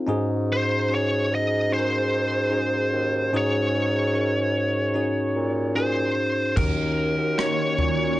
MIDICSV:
0, 0, Header, 1, 6, 480
1, 0, Start_track
1, 0, Tempo, 810811
1, 54, Time_signature, 4, 2, 24, 8
1, 4852, End_track
2, 0, Start_track
2, 0, Title_t, "Lead electric guitar"
2, 0, Program_c, 0, 29
2, 311, Note_on_c, 0, 72, 80
2, 550, Note_off_c, 0, 72, 0
2, 561, Note_on_c, 0, 73, 87
2, 794, Note_off_c, 0, 73, 0
2, 798, Note_on_c, 0, 75, 80
2, 1010, Note_off_c, 0, 75, 0
2, 1027, Note_on_c, 0, 72, 76
2, 1993, Note_off_c, 0, 72, 0
2, 1995, Note_on_c, 0, 73, 78
2, 3401, Note_off_c, 0, 73, 0
2, 3408, Note_on_c, 0, 72, 69
2, 3885, Note_on_c, 0, 70, 78
2, 3906, Note_off_c, 0, 72, 0
2, 4369, Note_on_c, 0, 73, 81
2, 4384, Note_off_c, 0, 70, 0
2, 4851, Note_off_c, 0, 73, 0
2, 4852, End_track
3, 0, Start_track
3, 0, Title_t, "Tine electric piano"
3, 0, Program_c, 1, 4
3, 0, Control_c, 1, 64, 127
3, 0, Note_on_c, 1, 60, 76
3, 0, Note_on_c, 1, 63, 68
3, 0, Note_on_c, 1, 65, 73
3, 0, Note_on_c, 1, 69, 81
3, 0, Note_on_c, 1, 72, 80
3, 39, Note_on_c, 1, 61, 93
3, 45, Note_off_c, 1, 63, 0
3, 45, Note_on_c, 1, 63, 92
3, 46, Note_on_c, 1, 44, 70
3, 47, Note_on_c, 1, 66, 84
3, 53, Note_on_c, 1, 68, 108
3, 63, Control_c, 1, 64, 0
3, 66, Note_off_c, 1, 65, 0
3, 67, Note_off_c, 1, 72, 0
3, 68, Note_off_c, 1, 69, 0
3, 69, Note_off_c, 1, 60, 0
3, 176, Control_c, 1, 64, 127
3, 503, Note_off_c, 1, 61, 0
3, 506, Note_off_c, 1, 63, 0
3, 507, Note_off_c, 1, 66, 0
3, 509, Note_off_c, 1, 68, 0
3, 530, Note_on_c, 1, 61, 56
3, 531, Note_on_c, 1, 63, 55
3, 536, Note_on_c, 1, 66, 49
3, 540, Note_on_c, 1, 68, 65
3, 746, Note_off_c, 1, 44, 0
3, 988, Note_off_c, 1, 61, 0
3, 989, Note_off_c, 1, 63, 0
3, 991, Note_off_c, 1, 66, 0
3, 993, Note_off_c, 1, 68, 0
3, 1007, Note_on_c, 1, 61, 60
3, 1012, Note_on_c, 1, 63, 51
3, 1015, Note_on_c, 1, 66, 53
3, 1021, Note_on_c, 1, 68, 54
3, 1056, Note_off_c, 1, 68, 0
3, 1058, Note_on_c, 1, 70, 69
3, 1467, Note_off_c, 1, 61, 0
3, 1469, Note_off_c, 1, 63, 0
3, 1471, Note_off_c, 1, 66, 0
3, 1485, Note_on_c, 1, 61, 63
3, 1485, Note_on_c, 1, 63, 56
3, 1491, Note_on_c, 1, 66, 56
3, 1492, Note_off_c, 1, 70, 0
3, 1493, Note_on_c, 1, 68, 72
3, 1945, Note_off_c, 1, 61, 0
3, 1945, Note_off_c, 1, 63, 0
3, 1949, Note_off_c, 1, 66, 0
3, 1950, Note_off_c, 1, 68, 0
3, 1970, Note_on_c, 1, 61, 88
3, 1973, Note_on_c, 1, 44, 61
3, 1973, Note_on_c, 1, 63, 79
3, 1976, Note_on_c, 1, 66, 78
3, 1980, Note_on_c, 1, 68, 101
3, 2428, Note_off_c, 1, 61, 0
3, 2429, Note_off_c, 1, 63, 0
3, 2431, Note_off_c, 1, 66, 0
3, 2433, Note_off_c, 1, 68, 0
3, 2447, Note_on_c, 1, 61, 55
3, 2449, Note_on_c, 1, 63, 52
3, 2457, Note_on_c, 1, 66, 54
3, 2460, Note_on_c, 1, 70, 61
3, 2670, Note_off_c, 1, 44, 0
3, 2907, Note_off_c, 1, 61, 0
3, 2907, Note_off_c, 1, 63, 0
3, 2912, Note_off_c, 1, 66, 0
3, 2913, Note_off_c, 1, 70, 0
3, 2923, Note_on_c, 1, 61, 71
3, 2926, Note_on_c, 1, 63, 67
3, 2930, Note_on_c, 1, 66, 66
3, 2934, Note_on_c, 1, 68, 75
3, 3384, Note_off_c, 1, 61, 0
3, 3386, Note_off_c, 1, 63, 0
3, 3388, Note_off_c, 1, 66, 0
3, 3390, Note_off_c, 1, 68, 0
3, 3404, Note_on_c, 1, 61, 72
3, 3412, Note_on_c, 1, 63, 69
3, 3415, Note_on_c, 1, 66, 59
3, 3417, Note_on_c, 1, 68, 79
3, 3865, Note_off_c, 1, 61, 0
3, 3869, Note_off_c, 1, 63, 0
3, 3871, Note_off_c, 1, 66, 0
3, 3872, Note_off_c, 1, 68, 0
3, 3884, Note_on_c, 1, 63, 60
3, 3885, Note_on_c, 1, 61, 65
3, 3890, Note_on_c, 1, 51, 60
3, 3890, Note_on_c, 1, 66, 59
3, 3897, Note_on_c, 1, 70, 70
3, 3902, Control_c, 1, 64, 0
3, 4008, Control_c, 1, 64, 127
3, 4345, Note_off_c, 1, 63, 0
3, 4346, Note_off_c, 1, 61, 0
3, 4348, Note_off_c, 1, 66, 0
3, 4352, Note_off_c, 1, 70, 0
3, 4368, Note_on_c, 1, 61, 60
3, 4373, Note_on_c, 1, 63, 51
3, 4374, Note_on_c, 1, 66, 54
3, 4379, Note_on_c, 1, 70, 64
3, 4588, Note_off_c, 1, 51, 0
3, 4827, Note_off_c, 1, 61, 0
3, 4829, Note_off_c, 1, 63, 0
3, 4830, Note_off_c, 1, 66, 0
3, 4833, Note_off_c, 1, 70, 0
3, 4852, End_track
4, 0, Start_track
4, 0, Title_t, "Ambient pad"
4, 0, Program_c, 2, 92
4, 3885, Note_on_c, 2, 66, 78
4, 3887, Note_on_c, 2, 61, 64
4, 3889, Note_on_c, 2, 51, 79
4, 3889, Note_on_c, 2, 58, 72
4, 4852, Note_off_c, 2, 51, 0
4, 4852, Note_off_c, 2, 58, 0
4, 4852, Note_off_c, 2, 61, 0
4, 4852, Note_off_c, 2, 66, 0
4, 4852, End_track
5, 0, Start_track
5, 0, Title_t, "Bassoon"
5, 0, Program_c, 3, 70
5, 56, Note_on_c, 3, 44, 82
5, 751, Note_off_c, 3, 44, 0
5, 774, Note_on_c, 3, 44, 92
5, 1711, Note_off_c, 3, 44, 0
5, 1732, Note_on_c, 3, 39, 75
5, 1956, Note_off_c, 3, 39, 0
5, 1971, Note_on_c, 3, 44, 96
5, 3013, Note_off_c, 3, 44, 0
5, 3173, Note_on_c, 3, 46, 85
5, 3630, Note_off_c, 3, 46, 0
5, 3891, Note_on_c, 3, 39, 81
5, 4229, Note_off_c, 3, 39, 0
5, 4248, Note_on_c, 3, 39, 82
5, 4587, Note_off_c, 3, 39, 0
5, 4607, Note_on_c, 3, 46, 77
5, 4852, Note_off_c, 3, 46, 0
5, 4852, End_track
6, 0, Start_track
6, 0, Title_t, "Drums"
6, 3890, Note_on_c, 9, 43, 96
6, 3890, Note_on_c, 9, 49, 78
6, 3891, Note_on_c, 9, 36, 93
6, 3949, Note_off_c, 9, 43, 0
6, 3949, Note_off_c, 9, 49, 0
6, 3950, Note_off_c, 9, 36, 0
6, 4374, Note_on_c, 9, 37, 97
6, 4433, Note_off_c, 9, 37, 0
6, 4609, Note_on_c, 9, 43, 48
6, 4668, Note_off_c, 9, 43, 0
6, 4852, End_track
0, 0, End_of_file